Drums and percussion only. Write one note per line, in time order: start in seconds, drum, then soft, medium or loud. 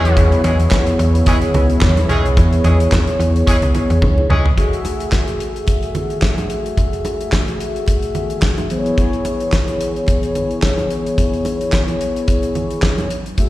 0.05 closed hi-hat medium
0.17 kick loud
0.17 closed hi-hat medium
0.17 muted conga medium
0.32 closed hi-hat soft
0.44 closed hi-hat medium
0.44 muted conga medium
0.60 closed hi-hat medium
0.71 kick loud
0.71 snare loud
0.71 clap medium
0.71 high conga medium
0.87 closed hi-hat medium
0.99 closed hi-hat medium
1.15 closed hi-hat medium
1.26 kick loud
1.26 closed hi-hat loud
1.26 muted conga soft
1.26 low conga medium
1.42 closed hi-hat medium
1.54 closed hi-hat medium
1.54 muted conga medium
1.54 low conga medium
1.70 closed hi-hat soft
1.81 kick loud
1.81 snare loud
1.81 clap loud
1.81 high conga medium
1.97 closed hi-hat medium
1.97 high conga medium
2.09 closed hi-hat medium
2.26 closed hi-hat soft
2.37 kick loud
2.37 closed hi-hat medium
2.37 muted conga medium
2.53 closed hi-hat medium
2.64 closed hi-hat medium
2.64 muted conga medium
2.80 closed hi-hat medium
2.92 kick loud
2.92 snare loud
2.92 clap medium
2.92 high conga medium
3.07 closed hi-hat medium
3.20 closed hi-hat medium
3.36 closed hi-hat medium
3.47 kick loud
3.47 closed hi-hat loud
3.62 closed hi-hat medium
3.75 closed hi-hat medium
3.75 muted conga medium
3.75 low conga medium
3.90 closed hi-hat medium
4.02 kick loud
4.02 high tom medium
4.02 high conga medium
4.18 high conga medium
4.30 mid tom loud
4.46 floor tom medium
4.58 kick medium
4.58 closed hi-hat medium
4.58 muted conga soft
4.73 closed hi-hat soft
4.85 closed hi-hat medium
4.85 muted conga medium
5.00 closed hi-hat medium
5.12 kick loud
5.12 snare medium
5.12 clap medium
5.12 high conga medium
5.28 closed hi-hat soft
5.40 closed hi-hat medium
5.56 closed hi-hat soft
5.67 kick loud
5.67 closed hi-hat medium
5.67 muted conga soft
5.83 closed hi-hat soft
5.95 closed hi-hat medium
5.95 muted conga soft
5.95 low conga medium
6.10 closed hi-hat soft
6.22 kick loud
6.22 snare loud
6.22 clap medium
6.22 high conga medium
6.38 closed hi-hat soft
6.38 high conga medium
6.50 closed hi-hat medium
6.66 closed hi-hat soft
6.77 kick medium
6.77 closed hi-hat medium
6.77 muted conga soft
6.93 closed hi-hat soft
7.05 closed hi-hat medium
7.05 muted conga medium
7.21 closed hi-hat soft
7.32 kick medium
7.32 snare loud
7.32 clap medium
7.32 high conga medium
7.48 closed hi-hat soft
7.60 closed hi-hat medium
7.76 closed hi-hat soft
7.86 kick loud
7.86 closed hi-hat loud
7.86 muted conga soft
8.02 closed hi-hat soft
8.15 closed hi-hat medium
8.15 muted conga soft
8.15 low conga medium
8.30 closed hi-hat soft
8.42 kick loud
8.42 snare loud
8.42 clap medium
8.42 high conga medium
8.58 closed hi-hat soft
8.58 high conga medium
8.70 closed hi-hat medium
8.86 closed hi-hat soft
8.98 kick medium
8.98 closed hi-hat medium
8.98 muted conga soft
9.13 closed hi-hat soft
9.25 closed hi-hat medium
9.25 muted conga medium
9.40 closed hi-hat medium
9.52 kick loud
9.52 snare medium
9.52 clap medium
9.52 high conga medium
9.68 closed hi-hat soft
9.81 closed hi-hat medium
9.96 closed hi-hat soft
10.07 kick loud
10.07 closed hi-hat loud
10.07 muted conga soft
10.23 closed hi-hat soft
10.35 closed hi-hat medium
10.35 muted conga soft
10.35 low conga medium
10.51 closed hi-hat soft
10.62 kick loud
10.62 snare loud
10.62 clap medium
10.62 high conga medium
10.78 closed hi-hat soft
10.78 high conga medium
10.91 closed hi-hat medium
11.06 closed hi-hat soft
11.18 kick medium
11.18 closed hi-hat medium
11.18 muted conga soft
11.34 closed hi-hat soft
11.45 closed hi-hat medium
11.45 muted conga medium
11.61 closed hi-hat soft
11.72 kick loud
11.72 snare medium
11.72 clap medium
11.72 high conga medium
11.88 closed hi-hat soft
12.01 closed hi-hat medium
12.16 closed hi-hat soft
12.28 kick loud
12.28 closed hi-hat medium
12.43 closed hi-hat soft
12.55 closed hi-hat medium
12.55 muted conga soft
12.55 low conga medium
12.71 closed hi-hat soft
12.82 kick medium
12.82 snare loud
12.82 clap medium
12.82 high conga medium
12.98 closed hi-hat soft
12.98 high conga medium
13.10 closed hi-hat medium
13.26 closed hi-hat soft
13.38 kick medium
13.38 closed hi-hat medium
13.38 muted conga soft